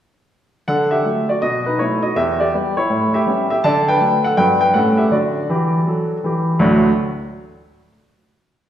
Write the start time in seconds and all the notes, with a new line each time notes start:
0.68 D3 A4 F#5
0.91 G4 E5
1.04 F#3 A3
1.29 F#4 D5
1.42 B2 F#4 D#5
1.66 D#4 B4
1.79 F#3 A3 B3 E4 C#5
2.02 F#4 D#5
2.16 E2 G4 E5
2.40 G4 D5
2.54 G3 B3
2.77 E4 C#5
2.90 A2
3.14 G4 E5
3.26 G3 B3 C#4
3.50 G4 E5
3.64 D3 D5 A5
3.88 B4 G5
4.00 F#3 A3 D4
4.24 A4 F#5
4.37 G2 F#3 B3 D4 B4 G5
4.61 B4 G5
4.74 A2 G3 A3 C#4 A4 F#5
4.97 G4 E5
5.11 D3 F#4 D5
5.50 E3 G4
5.87 F#3 A4
6.24 E3 G4
6.59 D2 A2 F#3 A3 D4 F#4